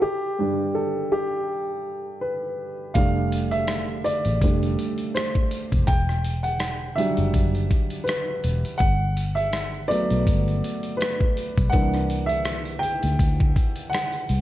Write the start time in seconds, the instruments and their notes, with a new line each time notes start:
0.02 upright piano G4
0.39 upright piano G2 G3 D4
0.75 upright piano A4
1.12 upright piano G4
2.21 upright piano B4
2.94 fingered electric bass F1, upright piano G3 A3 D4 F5, kick, closed hi-hat, shaker
3.16 shaker
3.32 closed hi-hat, shaker
3.51 upright piano E5, closed hi-hat, shaker
3.67 cross-stick, closed hi-hat, shaker
3.88 shaker
4.04 upright piano D5, closed hi-hat, shaker
4.25 fingered electric bass A1, closed hi-hat, shaker
4.42 fingered electric bass F1, upright piano G3 A3 D4, kick, closed hi-hat, shaker
4.62 closed hi-hat, shaker
4.79 closed hi-hat
4.98 closed hi-hat, shaker
5.14 upright piano C5, cross-stick, closed hi-hat, shaker
5.34 kick, shaker
5.51 closed hi-hat
5.70 fingered electric bass F1, kick, closed hi-hat, shaker
5.87 fingered electric bass E1, upright piano G5, kick, closed hi-hat, shaker
6.08 cross-stick, shaker
6.23 closed hi-hat, shaker
6.42 upright piano F#5, closed hi-hat, shaker
6.60 cross-stick, closed hi-hat, shaker
6.80 shaker
6.96 upright piano F#3 G3 D4 E5, closed hi-hat, shaker
7.17 fingered electric bass F#1, closed hi-hat, shaker
7.32 fingered electric bass F#1, kick, closed hi-hat, shaker
7.53 closed hi-hat, shaker
7.71 kick, closed hi-hat
7.89 closed hi-hat, shaker
8.04 upright piano B4, closed hi-hat, shaker
8.09 cross-stick
8.27 shaker
8.44 fingered electric bass E1, closed hi-hat
8.63 closed hi-hat, shaker
8.78 fingered electric bass G1, upright piano F#5, kick, closed hi-hat, shaker
9.01 shaker
9.16 closed hi-hat, shaker
9.35 upright piano E5, closed hi-hat, shaker
9.53 cross-stick, closed hi-hat, shaker
9.74 shaker
9.88 upright piano F#3 A3 B3 D5, closed hi-hat, shaker
10.10 fingered electric bass B1, closed hi-hat, shaker
10.27 fingered electric bass G1, kick, closed hi-hat, shaker
10.48 closed hi-hat, shaker
10.64 closed hi-hat
10.83 closed hi-hat, shaker
10.97 upright piano B4, closed hi-hat, shaker
11.02 cross-stick
11.20 kick, shaker
11.37 closed hi-hat
11.55 fingered electric bass B1, kick, closed hi-hat, shaker
11.70 fingered electric bass C2, upright piano E3 A#3 F#5, kick, closed hi-hat
11.74 upright piano D4, shaker
11.93 cross-stick, closed hi-hat, shaker
12.09 closed hi-hat, shaker
12.26 upright piano E5, closed hi-hat, shaker
12.45 cross-stick, closed hi-hat, shaker
12.65 closed hi-hat, shaker
12.79 upright piano G5, closed hi-hat, shaker
13.03 fingered electric bass D2, closed hi-hat, shaker
13.19 fingered electric bass D2, kick, closed hi-hat, shaker
13.39 kick, shaker
13.55 kick, closed hi-hat, shaker
13.75 closed hi-hat, shaker
13.90 upright piano F#5, closed hi-hat, shaker
13.95 cross-stick
14.11 closed hi-hat, shaker
14.27 fingered electric bass C2, closed hi-hat, shaker